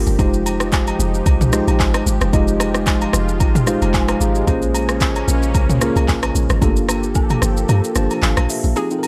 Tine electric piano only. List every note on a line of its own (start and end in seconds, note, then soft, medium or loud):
0.00 0.21 A#3 medium
0.00 0.21 D4 medium
0.00 0.19 F4 medium
0.00 0.20 G4 medium
0.00 0.21 A4 loud
0.00 0.21 A#4 medium
0.19 1.05 G#3 medium
0.19 1.05 D#4 medium
0.19 1.05 F4 medium
0.19 1.06 G4 medium
0.19 1.06 C5 medium
1.52 2.18 G#3 medium
1.52 2.18 D#4 medium
1.52 2.18 F4 medium
1.52 2.19 G4 medium
1.52 2.19 C5 loud
2.33 3.19 G#3 medium
2.33 3.20 D#4 medium
2.33 3.20 F4 medium
2.33 3.20 G4 medium
2.33 3.20 D#5 loud
3.67 4.32 G#3 medium
3.67 4.33 D#4 medium
3.67 4.33 F4 medium
3.67 3.94 G4 medium
3.67 3.94 C5 loud
3.67 3.92 F5 medium
3.94 4.20 C5 medium
3.94 4.19 G#5 medium
4.21 4.35 G#4 medium
4.21 4.35 F5 medium
4.21 4.46 A#5 medium
4.36 4.61 G4 medium
4.36 4.61 D#5 medium
4.47 5.34 A#3 medium
4.47 5.34 C#4 medium
4.47 5.34 F4 medium
4.47 5.34 G#4 medium
4.47 5.34 C5 loud
5.81 6.47 A#3 medium
5.81 6.47 C#4 medium
5.81 6.47 F4 medium
5.81 6.47 G#4 medium
5.81 6.47 A#4 medium
6.61 6.69 A3 medium
6.61 7.48 D4 medium
6.61 7.48 F4 medium
6.61 7.48 G4 medium
6.61 7.49 A4 loud
6.68 7.51 A#3 medium
7.95 8.61 A#3 medium
7.95 8.61 D4 medium
7.95 8.61 F4 medium
7.95 8.62 G4 medium
7.95 8.62 C5 medium
7.95 8.21 A5 medium
8.23 8.48 F5 medium
8.50 8.75 E5 medium
8.76 8.88 C4 medium
8.76 8.88 D#4 medium
8.76 8.88 F4 medium
8.76 8.88 G4 medium
8.76 8.88 G#4 medium
8.91 9.07 C4 medium
8.91 9.07 D#4 medium
8.91 9.07 F4 medium
8.91 8.97 A4 medium
8.91 9.07 G5 medium
8.99 9.07 A#4 medium